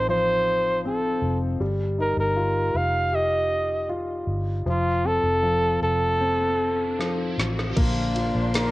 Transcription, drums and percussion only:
7.00 snare soft
7.39 snare medium
7.59 snare medium
7.77 kick medium
7.77 crash medium
7.77 ride medium
8.16 ride medium
8.54 snare loud
8.54 ride medium

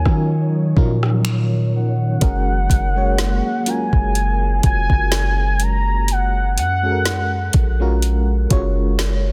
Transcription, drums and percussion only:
0.06 kick medium
0.06 cross-stick medium
0.77 kick medium
1.03 cross-stick medium
1.25 finger snap loud
2.21 kick loud
2.21 closed hi-hat medium
2.70 kick medium
2.70 closed hi-hat medium
3.18 snare loud
3.18 closed hi-hat medium
3.66 closed hi-hat medium
3.93 kick medium
4.15 closed hi-hat medium
4.63 kick medium
4.63 closed hi-hat medium
4.90 kick medium
5.12 snare loud
5.12 closed hi-hat medium
5.60 closed hi-hat medium
6.08 closed hi-hat medium
6.58 closed hi-hat medium
7.06 snare loud
7.06 closed hi-hat medium
7.53 kick medium
7.53 closed hi-hat medium
8.02 closed hi-hat medium
8.51 kick medium
8.51 closed hi-hat medium
8.99 snare loud
8.99 closed hi-hat medium

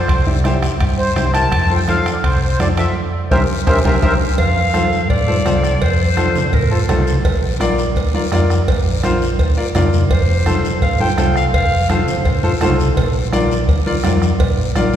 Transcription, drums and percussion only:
0.08 bombo low medium
0.08 bombo rim medium
0.08 high conga soft
0.08 high timbale medium
0.08 long guiro medium
0.27 high conga medium
0.44 bombo rim medium
0.44 high conga medium
0.44 high timbale medium
0.44 short guiro medium
0.62 bombo rim medium
0.62 high timbale medium
0.62 short guiro medium
0.80 bombo low medium
0.80 bombo rim medium
0.80 high conga soft
0.80 high timbale medium
0.80 long guiro medium
1.16 bombo rim medium
1.16 high conga medium
1.16 high timbale medium
1.16 low timbale medium
1.16 short guiro medium
1.34 bombo rim medium
1.34 high timbale medium
1.34 short guiro medium
1.52 bombo low medium
1.52 bombo rim medium
1.52 high conga soft
1.52 high timbale medium
1.52 long guiro medium
1.70 high conga medium
1.88 bombo rim medium
1.88 high conga medium
1.88 high timbale medium
1.88 short guiro medium
2.06 bombo rim medium
2.06 high timbale medium
2.06 short guiro medium
2.24 bombo low medium
2.24 bombo rim medium
2.24 high conga soft
2.24 high timbale medium
2.24 long guiro medium
2.60 bombo rim medium
2.60 high conga medium
2.60 high timbale medium
2.60 low timbale medium
2.60 short guiro medium
2.77 bombo rim medium
2.77 high timbale medium
2.77 short guiro medium
3.31 bombo low medium
3.31 high conga loud
3.31 high timbale medium
3.31 long guiro medium
3.67 bombo low loud
3.67 high conga medium
3.67 high timbale loud
3.67 long guiro loud
3.85 bombo low medium
3.85 high conga loud
3.85 high timbale medium
3.85 long guiro loud
4.03 bombo low medium
4.03 high conga medium
4.03 high timbale medium
4.03 long guiro medium
4.38 bombo low medium
4.38 cowbell loud
4.38 long guiro medium
4.74 bombo rim medium
4.74 cowbell medium
4.74 high conga medium
4.74 short guiro medium
4.93 short guiro medium
5.10 bombo low medium
5.10 cowbell medium
5.10 long guiro medium
5.28 high conga medium
5.46 bombo rim medium
5.46 cowbell medium
5.46 high conga medium
5.46 low timbale medium
5.46 short guiro medium
5.63 bombo rim medium
5.63 short guiro medium
5.81 bombo low medium
5.81 cowbell loud
5.81 long guiro medium
6.17 bombo rim medium
6.17 cowbell medium
6.17 high conga medium
6.17 short guiro medium
6.35 low conga medium
6.35 short guiro medium
6.53 bombo low medium
6.53 cowbell medium
6.53 long guiro medium
6.89 bombo rim medium
6.89 cowbell medium
6.89 high conga medium
6.89 low conga medium
6.89 low timbale medium
6.89 short guiro medium
7.07 short guiro medium
7.25 bombo low medium
7.25 cowbell loud
7.25 long guiro medium
7.61 bombo rim medium
7.61 cowbell medium
7.61 high conga medium
7.61 short guiro medium
7.78 short guiro medium
7.96 bombo low medium
7.96 cowbell medium
7.96 long guiro medium
8.14 high conga medium
8.32 bombo rim medium
8.32 cowbell medium
8.32 high conga medium
8.32 low timbale medium
8.32 short guiro medium
8.50 bombo rim medium
8.50 short guiro medium
8.68 bombo low medium
8.68 cowbell loud
8.68 long guiro medium
9.03 bombo rim medium
9.03 cowbell medium
9.03 high conga medium
9.03 short guiro medium
9.22 short guiro medium
9.39 bombo low medium
9.39 cowbell loud
9.39 long guiro medium
9.75 bombo rim medium
9.75 cowbell medium
9.75 high conga medium
9.75 low conga medium
9.75 low timbale medium
9.75 short guiro medium
9.93 short guiro medium
10.11 bombo low medium
10.11 cowbell loud
10.11 long guiro medium
10.46 bombo rim medium
10.46 cowbell medium
10.46 high conga medium
10.46 short guiro medium
10.65 short guiro medium
10.82 bombo low medium
10.82 cowbell medium
10.82 long guiro medium
11.00 high conga medium
11.18 bombo rim medium
11.18 cowbell medium
11.18 high conga medium
11.18 low timbale medium
11.18 short guiro medium
11.36 bombo rim medium
11.36 short guiro medium
11.54 bombo low medium
11.54 cowbell loud
11.54 long guiro medium
11.90 bombo rim medium
11.90 cowbell medium
11.90 high conga medium
11.90 short guiro medium
12.08 low conga medium
12.08 short guiro medium
12.25 bombo low medium
12.25 cowbell medium
12.25 long guiro medium
12.43 high conga medium
12.61 bombo rim medium
12.61 cowbell medium
12.61 high conga medium
12.61 low conga medium
12.61 low timbale medium
12.61 short guiro medium
12.80 short guiro medium
12.97 bombo low medium
12.97 cowbell loud
12.97 long guiro medium
13.32 bombo rim medium
13.32 cowbell medium
13.32 high conga medium
13.32 short guiro medium
13.51 short guiro medium
13.68 bombo low medium
13.68 cowbell medium
13.68 long guiro medium
13.86 high conga medium
14.04 bombo rim medium
14.04 cowbell medium
14.04 high conga medium
14.04 low timbale medium
14.04 short guiro medium
14.22 bombo rim medium
14.22 short guiro medium
14.40 bombo low medium
14.40 cowbell loud
14.40 long guiro medium
14.75 bombo rim medium
14.75 cowbell medium
14.75 high conga medium
14.75 short guiro medium

